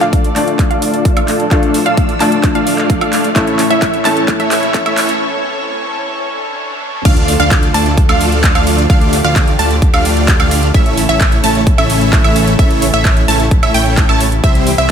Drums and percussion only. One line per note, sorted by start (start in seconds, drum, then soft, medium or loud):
0.01 clap soft
0.01 closed hi-hat soft
0.13 kick loud
0.13 closed hi-hat medium
0.24 closed hi-hat soft
0.36 clap soft
0.36 open hi-hat medium
0.48 closed hi-hat soft
0.59 kick loud
0.59 clap soft
0.59 closed hi-hat medium
0.71 closed hi-hat soft
0.82 open hi-hat loud
0.94 closed hi-hat soft
1.05 kick loud
1.05 closed hi-hat medium
1.17 closed hi-hat soft
1.17 high woodblock medium
1.28 clap medium
1.28 open hi-hat medium
1.40 closed hi-hat soft
1.51 kick loud
1.51 clap medium
1.51 closed hi-hat medium
1.63 closed hi-hat soft
1.74 open hi-hat loud
1.86 closed hi-hat soft
1.97 kick loud
1.97 closed hi-hat medium
2.09 closed hi-hat soft
2.20 clap medium
2.20 open hi-hat medium
2.32 closed hi-hat soft
2.43 kick loud
2.43 clap medium
2.43 closed hi-hat medium
2.55 closed hi-hat soft
2.67 open hi-hat loud
2.78 clap medium
2.90 kick loud
2.90 closed hi-hat medium
3.01 closed hi-hat soft
3.01 high woodblock medium
3.13 clap medium
3.13 open hi-hat medium
3.24 closed hi-hat soft
3.36 kick loud
3.36 clap medium
3.36 closed hi-hat medium
3.47 closed hi-hat soft
3.59 clap medium
3.59 open hi-hat loud
3.71 closed hi-hat soft
3.82 kick loud
3.82 clap medium
3.82 closed hi-hat medium
3.94 closed hi-hat soft
4.05 clap medium
4.05 open hi-hat medium
4.17 closed hi-hat soft
4.28 kick loud
4.28 clap medium
4.28 closed hi-hat medium
4.40 closed hi-hat soft
4.51 clap medium
4.51 open hi-hat loud
4.63 closed hi-hat soft
4.74 kick loud
4.74 clap medium
4.74 closed hi-hat medium
4.86 closed hi-hat soft
4.86 high woodblock medium
4.97 clap medium
4.97 open hi-hat loud
5.09 closed hi-hat soft
7.05 kick loud
7.05 closed hi-hat medium
7.05 crash loud
7.17 closed hi-hat soft
7.28 open hi-hat loud
7.40 closed hi-hat soft
7.51 kick loud
7.51 clap loud
7.51 closed hi-hat medium
7.63 closed hi-hat soft
7.74 open hi-hat loud
7.86 closed hi-hat soft
7.97 kick loud
7.97 closed hi-hat medium
8.09 closed hi-hat soft
8.09 high woodblock medium
8.21 open hi-hat loud
8.32 closed hi-hat soft
8.44 kick loud
8.44 clap loud
8.44 closed hi-hat medium
8.55 closed hi-hat soft
8.55 high woodblock medium
8.67 open hi-hat loud
8.78 closed hi-hat soft
8.90 kick loud
8.90 closed hi-hat medium
9.01 closed hi-hat soft
9.13 open hi-hat loud
9.24 closed hi-hat soft
9.36 kick loud
9.36 clap loud
9.36 closed hi-hat medium
9.48 closed hi-hat soft
9.59 open hi-hat loud
9.71 closed hi-hat soft
9.82 kick loud
9.82 closed hi-hat medium
9.94 closed hi-hat soft
9.94 high woodblock medium
10.05 open hi-hat loud
10.17 closed hi-hat soft
10.28 kick loud
10.28 clap loud
10.28 closed hi-hat medium
10.40 closed hi-hat soft
10.40 high woodblock medium
10.51 open hi-hat loud
10.63 closed hi-hat soft
10.74 kick loud
10.74 closed hi-hat medium
10.86 closed hi-hat soft
10.97 open hi-hat loud
11.09 closed hi-hat soft
11.21 kick loud
11.21 clap loud
11.21 closed hi-hat medium
11.32 closed hi-hat soft
11.44 open hi-hat loud
11.55 closed hi-hat soft
11.67 kick loud
11.67 closed hi-hat medium
11.78 closed hi-hat soft
11.78 high woodblock medium
11.90 open hi-hat loud
12.01 closed hi-hat soft
12.13 kick loud
12.13 clap loud
12.13 closed hi-hat medium
12.24 closed hi-hat soft
12.24 high woodblock medium
12.36 open hi-hat loud
12.47 closed hi-hat soft
12.59 kick loud
12.59 closed hi-hat medium
12.71 closed hi-hat soft
12.82 open hi-hat loud
12.94 closed hi-hat soft
13.05 kick loud
13.05 clap loud
13.05 closed hi-hat medium
13.17 closed hi-hat soft
13.28 open hi-hat loud
13.40 closed hi-hat soft
13.51 kick loud
13.51 closed hi-hat medium
13.63 closed hi-hat soft
13.63 high woodblock medium
13.74 open hi-hat loud
13.86 closed hi-hat soft
13.97 kick loud
13.97 clap loud
13.97 closed hi-hat medium
14.09 closed hi-hat soft
14.09 high woodblock medium
14.21 open hi-hat loud
14.32 closed hi-hat soft
14.44 kick loud
14.44 closed hi-hat medium
14.55 closed hi-hat soft
14.67 open hi-hat loud
14.78 closed hi-hat soft